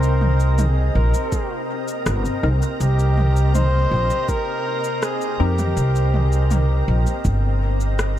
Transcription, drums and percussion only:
0.03 cabasa soft
0.21 mid tom medium
0.40 cabasa soft
0.58 mid tom medium
0.58 cabasa medium
1.14 cabasa soft
1.32 kick loud
1.32 cabasa medium
1.88 cabasa soft
2.06 cross-stick loud
2.06 cabasa medium
2.25 cabasa soft
2.62 cabasa soft
2.81 cabasa medium
2.99 cabasa soft
3.18 mid tom medium
3.36 cabasa soft
3.55 mid tom medium
3.55 cabasa medium
4.10 cabasa soft
4.29 kick loud
4.29 cabasa medium
4.84 cabasa soft
5.03 cross-stick medium
5.03 cabasa medium
5.21 cabasa soft
5.59 mid tom medium
5.59 cabasa soft
5.77 cabasa medium
5.96 cabasa soft
6.14 mid tom medium
6.33 cabasa soft
6.51 mid tom medium
6.51 cabasa medium
7.07 cabasa soft
7.25 kick loud
7.25 cabasa medium
7.81 cabasa soft
7.99 cross-stick loud
7.99 cabasa medium

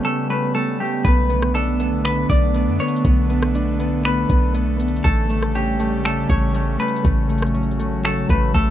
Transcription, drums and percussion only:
1.05 kick loud
1.05 closed hi-hat medium
1.30 closed hi-hat medium
1.42 cross-stick loud
1.55 closed hi-hat medium
1.80 closed hi-hat medium
2.05 finger snap loud
2.05 closed hi-hat medium
2.29 kick loud
2.29 closed hi-hat medium
2.54 closed hi-hat medium
2.80 closed hi-hat medium
2.88 closed hi-hat medium
2.96 closed hi-hat soft
3.05 kick loud
3.05 closed hi-hat medium
3.30 closed hi-hat medium
3.42 cross-stick loud
3.55 closed hi-hat medium
3.80 closed hi-hat medium
4.05 finger snap loud
4.05 closed hi-hat medium
4.29 kick loud
4.29 closed hi-hat medium
4.54 closed hi-hat medium
4.80 closed hi-hat medium
4.88 closed hi-hat medium
4.97 closed hi-hat soft
5.05 kick loud
5.05 closed hi-hat medium
5.30 closed hi-hat medium
5.42 cross-stick medium
5.55 closed hi-hat medium
5.80 closed hi-hat medium
6.05 finger snap loud
6.05 closed hi-hat medium
6.29 kick loud
6.29 closed hi-hat medium
6.54 closed hi-hat medium
6.80 closed hi-hat medium
6.88 closed hi-hat medium
6.96 closed hi-hat soft
7.05 kick loud
7.05 closed hi-hat medium
7.30 closed hi-hat medium
7.38 closed hi-hat soft
7.42 cross-stick loud
7.46 closed hi-hat soft
7.55 closed hi-hat soft
7.63 closed hi-hat soft
7.71 closed hi-hat soft
7.80 closed hi-hat medium
8.05 finger snap loud
8.05 closed hi-hat medium
8.29 kick loud
8.29 closed hi-hat medium
8.54 kick medium
8.54 closed hi-hat medium

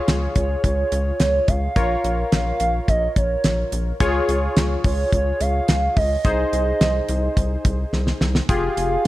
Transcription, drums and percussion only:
0.08 snare loud
0.08 closed hi-hat medium
0.36 kick medium
0.36 closed hi-hat medium
0.64 kick medium
0.64 closed hi-hat medium
0.92 closed hi-hat medium
1.20 snare loud
1.20 closed hi-hat medium
1.48 kick medium
1.48 closed hi-hat medium
1.76 kick loud
1.76 closed hi-hat medium
2.04 closed hi-hat medium
2.32 snare loud
2.32 closed hi-hat medium
2.60 closed hi-hat medium
2.88 kick medium
2.88 closed hi-hat medium
3.16 kick medium
3.16 closed hi-hat medium
3.44 snare loud
3.44 closed hi-hat medium
3.72 closed hi-hat medium
4.00 kick loud
4.00 closed hi-hat medium
4.29 closed hi-hat medium
4.57 snare loud
4.57 closed hi-hat medium
4.84 kick loud
4.84 open hi-hat medium
5.12 kick medium
5.12 closed hi-hat medium
5.41 closed hi-hat medium
5.68 snare loud
5.68 closed hi-hat medium
5.97 kick loud
5.97 open hi-hat medium
6.25 kick loud
6.25 closed hi-hat medium
6.53 closed hi-hat medium
6.81 snare loud
6.81 closed hi-hat medium
7.09 closed hi-hat medium
7.37 kick medium
7.37 closed hi-hat medium
7.65 kick loud
7.65 closed hi-hat medium
7.93 snare medium
8.07 snare medium
8.21 snare medium
8.35 snare medium
8.49 kick loud
8.49 closed hi-hat medium
8.77 closed hi-hat medium

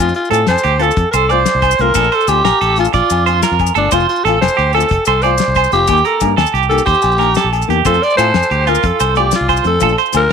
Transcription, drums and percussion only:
0.00 low agogo medium
0.09 maracas soft
0.14 closed hi-hat soft
0.25 maracas soft
0.31 closed hi-hat soft
0.31 low agogo medium
0.31 maracas medium
0.47 snare medium
0.47 closed hi-hat medium
0.47 low agogo medium
0.58 maracas medium
0.64 closed hi-hat soft
0.80 closed hi-hat soft
0.80 low agogo medium
0.80 maracas soft
0.91 maracas medium
0.97 kick medium
0.97 closed hi-hat medium
0.97 maracas soft
1.13 closed hi-hat soft
1.13 low agogo medium
1.13 maracas medium
1.30 closed hi-hat soft
1.30 low agogo medium
1.30 maracas soft
1.46 snare medium
1.46 closed hi-hat medium
1.46 maracas medium
1.62 kick medium
1.62 closed hi-hat soft
1.62 low agogo medium
1.62 maracas soft
1.71 maracas medium
1.79 closed hi-hat soft
1.79 maracas soft
1.94 kick medium
1.94 closed hi-hat medium
1.94 low agogo medium
1.94 maracas loud
2.04 maracas soft
2.12 closed hi-hat soft
2.21 maracas soft
2.28 closed hi-hat soft
2.28 low agogo medium
2.28 maracas medium
2.45 snare medium
2.45 closed hi-hat medium
2.45 low agogo medium
2.61 closed hi-hat soft
2.76 closed hi-hat medium
2.76 low agogo medium
2.76 maracas soft
2.85 maracas medium
2.93 kick medium
2.93 closed hi-hat medium
2.93 maracas soft
3.10 closed hi-hat soft
3.10 low agogo medium
3.10 maracas medium
3.26 closed hi-hat soft
3.26 low agogo medium
3.26 maracas soft
3.42 snare medium
3.42 closed hi-hat medium
3.42 maracas loud
3.59 kick medium
3.59 closed hi-hat soft
3.59 low agogo medium
3.59 maracas soft
3.67 maracas medium
3.75 closed hi-hat soft
3.75 maracas soft
3.91 kick medium
3.91 closed hi-hat medium
3.91 low agogo medium
3.91 maracas loud
4.00 maracas soft
4.09 closed hi-hat soft
4.16 maracas soft
4.26 closed hi-hat soft
4.26 low agogo medium
4.42 snare medium
4.42 closed hi-hat medium
4.42 low agogo medium
4.48 maracas medium
4.59 closed hi-hat soft
4.73 closed hi-hat soft
4.73 low agogo medium
4.73 maracas soft
4.80 maracas medium
4.89 kick medium
4.89 closed hi-hat medium
4.89 maracas soft
5.05 closed hi-hat soft
5.05 low agogo medium
5.05 maracas medium
5.22 closed hi-hat medium
5.22 low agogo medium
5.22 maracas soft
5.38 snare medium
5.38 closed hi-hat medium
5.38 maracas medium
5.55 kick medium
5.55 closed hi-hat soft
5.55 low agogo medium
5.55 maracas soft
5.64 maracas medium
5.72 closed hi-hat soft
5.72 maracas soft
5.87 kick medium
5.87 closed hi-hat medium
5.87 low agogo medium
5.87 maracas medium
5.97 maracas soft
6.05 closed hi-hat soft
6.05 maracas soft
6.21 kick medium
6.21 closed hi-hat soft
6.21 low agogo medium
6.21 maracas medium
6.38 snare medium
6.38 closed hi-hat medium
6.38 low agogo medium
6.46 maracas medium
6.55 closed hi-hat soft
6.63 maracas soft
6.71 closed hi-hat soft
6.71 low agogo medium
6.71 maracas soft
6.78 maracas medium
6.86 kick medium
6.86 closed hi-hat medium
6.86 maracas soft
6.94 maracas soft
7.02 closed hi-hat soft
7.02 low agogo medium
7.02 maracas medium
7.12 maracas soft
7.18 closed hi-hat soft
7.18 low agogo medium
7.18 maracas soft
7.35 snare medium
7.35 closed hi-hat medium
7.35 maracas medium
7.53 closed hi-hat soft
7.53 low agogo medium
7.53 maracas soft
7.62 maracas medium
7.70 closed hi-hat soft
7.85 kick medium
7.85 closed hi-hat medium
7.85 low agogo medium
7.85 maracas medium
7.94 maracas soft
8.03 closed hi-hat soft
8.10 maracas soft
8.18 closed hi-hat medium
8.18 low agogo medium
8.18 maracas medium
8.34 snare medium
8.34 closed hi-hat medium
8.34 low agogo medium
8.43 maracas medium
8.51 closed hi-hat soft
8.67 closed hi-hat soft
8.67 low agogo medium
8.67 maracas soft
8.75 maracas medium
8.83 kick medium
8.83 closed hi-hat medium
8.83 maracas soft
9.00 closed hi-hat soft
9.00 low agogo medium
9.00 maracas medium
9.15 closed hi-hat soft
9.15 low agogo medium
9.15 maracas soft
9.31 snare medium
9.31 closed hi-hat medium
9.31 maracas medium
9.49 kick medium
9.49 closed hi-hat soft
9.49 low agogo medium
9.49 maracas soft
9.57 maracas medium
9.64 closed hi-hat soft
9.64 maracas soft
9.80 kick medium
9.80 closed hi-hat medium
9.80 low agogo soft
9.80 maracas loud
9.89 maracas soft
9.98 closed hi-hat soft
10.06 maracas soft
10.13 closed hi-hat soft
10.13 low agogo medium
10.13 maracas medium

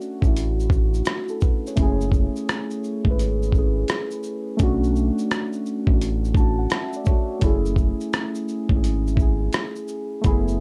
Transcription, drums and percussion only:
0.01 shaker soft
0.22 kick medium
0.22 shaker soft
0.37 closed hi-hat medium
0.37 shaker medium
0.60 shaker soft
0.70 kick medium
0.70 shaker soft
0.94 shaker soft
1.05 cross-stick loud
1.05 closed hi-hat medium
1.05 shaker medium
1.28 shaker soft
1.41 kick medium
1.41 shaker soft
1.67 shaker medium
1.77 kick loud
1.77 closed hi-hat medium
1.77 shaker medium
2.01 shaker soft
2.12 kick medium
2.12 shaker soft
2.36 shaker soft
2.49 cross-stick loud
2.49 closed hi-hat medium
2.49 shaker medium
2.71 shaker soft
2.84 shaker soft
3.05 kick medium
3.19 closed hi-hat medium
3.19 shaker medium
3.42 shaker soft
3.52 kick medium
3.52 shaker soft
3.88 cross-stick loud
3.88 closed hi-hat medium
3.88 shaker medium
4.11 shaker soft
4.23 shaker soft
4.59 kick loud
4.59 closed hi-hat medium
4.59 shaker medium
4.83 shaker soft
4.96 shaker soft
5.18 shaker soft
5.31 cross-stick loud
5.31 closed hi-hat medium
5.31 shaker medium
5.53 shaker soft
5.66 shaker soft
5.87 kick loud
6.01 closed hi-hat medium
6.01 shaker medium
6.25 shaker soft
6.35 kick loud
6.35 shaker soft
6.70 cross-stick loud
6.70 closed hi-hat medium
6.70 shaker medium
6.93 shaker soft
7.05 kick medium
7.05 shaker soft
7.41 kick loud
7.41 closed hi-hat medium
7.41 shaker medium
7.65 shaker soft
7.76 kick medium
7.76 shaker soft
8.01 shaker soft
8.13 cross-stick loud
8.13 closed hi-hat medium
8.13 shaker medium
8.35 shaker soft
8.48 shaker soft
8.69 kick medium
8.84 closed hi-hat medium
8.84 shaker medium
9.07 shaker soft
9.17 kick loud
9.17 shaker soft
9.53 cross-stick loud
9.53 closed hi-hat medium
9.53 shaker medium
9.76 shaker soft
9.88 shaker medium
10.24 kick loud
10.24 closed hi-hat medium
10.24 shaker medium
10.48 shaker soft

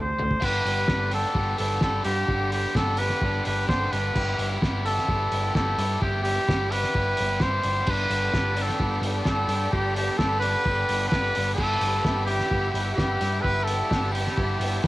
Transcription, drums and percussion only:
0.19 floor tom medium
0.31 kick medium
0.42 kick loud
0.42 crash loud
0.67 open hi-hat medium
0.88 kick loud
0.88 snare loud
1.11 open hi-hat medium
1.35 kick loud
1.58 open hi-hat medium
1.81 kick loud
1.81 snare loud
2.04 open hi-hat medium
2.28 kick loud
2.52 open hi-hat medium
2.75 kick loud
2.75 snare loud
2.97 open hi-hat medium
3.09 snare soft
3.22 kick loud
3.45 open hi-hat medium
3.69 kick loud
3.69 snare loud
3.93 open hi-hat medium
4.15 kick loud
4.15 crash loud
4.39 open hi-hat medium
4.62 kick loud
4.62 snare loud
4.86 open hi-hat medium
4.98 snare soft
5.09 kick loud
5.32 open hi-hat medium
5.55 kick loud
5.55 snare loud
5.79 open hi-hat loud
6.02 kick loud
6.25 open hi-hat loud
6.49 kick loud
6.49 snare loud
6.72 open hi-hat loud
6.83 snare soft
6.95 kick loud
7.17 open hi-hat medium
7.40 kick loud
7.40 snare loud
7.64 open hi-hat medium
7.86 kick loud
7.86 crash loud
8.11 open hi-hat medium
8.34 kick loud
8.34 snare loud
8.57 open hi-hat medium
8.69 snare soft
8.80 kick loud
9.03 open hi-hat medium
9.25 kick loud
9.25 snare loud
9.49 open hi-hat medium
9.73 kick loud
9.96 open hi-hat loud
10.19 kick loud
10.19 snare loud
10.42 open hi-hat loud
10.65 kick loud
10.89 open hi-hat medium
11.12 kick loud
11.12 snare loud
11.35 open hi-hat medium
11.58 kick loud
11.58 crash loud
11.81 open hi-hat medium
12.05 kick loud
12.05 snare loud
12.28 open hi-hat medium
12.39 snare soft
12.51 kick loud
12.75 open hi-hat medium
12.98 kick loud
12.98 snare loud
13.21 open hi-hat medium
13.44 kick loud
13.67 open hi-hat medium
13.91 kick loud
13.91 snare loud
14.15 open hi-hat medium
14.27 snare soft
14.38 kick loud
14.61 open hi-hat medium
14.84 kick loud
14.84 snare loud

